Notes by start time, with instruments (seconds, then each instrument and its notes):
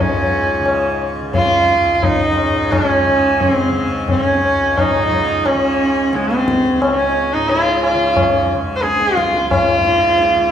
Already playing: tanpura C#2 C#3
0.00 tanpura G#2, sarangi C#4
0.59 tanpura C#3
0.66 tabla na
1.20 tanpura C#3
1.34 sarangi F4, tabla tin, tabla ge
1.83 tanpura C#2
1.95 sarangi F4
2.03 sarangi D#4, tabla tin, tabla ge
2.38 tabla na
2.45 tanpura G#2
2.72 sarangi C#4, tabla na, tabla ge
3.07 tanpura C#3
3.40 sarangi C#4, tabla tin, tabla ge
3.52 sarangi C4
3.69 tanpura C#3
4.08 sarangi C4, tabla tin, tabla ge
4.21 sarangi C#4
4.29 tanpura C#2
4.78 sarangi D#4, tabla na, tabla ge
4.89 tanpura G#2
5.11 tabla ge
5.46 sarangi C#4, tabla na
5.53 tanpura C#3
6.12 tanpura C#3, sarangi C4, tabla te
6.31 tabla te
6.48 tabla ke
6.65 tabla te
6.73 tanpura C#2
6.82 sarangi C4, tabla na
6.95 sarangi C#4
7.33 tanpura G#2, sarangi D#4
7.49 sarangi F4, tabla tin
7.83 sarangi F4, tabla na
7.93 tanpura C#3
8.17 tabla na, tabla ge
8.54 tanpura C#3
8.76 sarangi C5
8.82 sarangi G#4, tabla te
9.01 tabla te
9.16 tanpura C#2, sarangi F4, tabla ke
9.34 tabla te
9.50 sarangi F4, tabla na, tabla ge
9.76 tanpura G#2
9.85 tabla te
10.18 tabla te
10.35 tanpura C#3, tabla te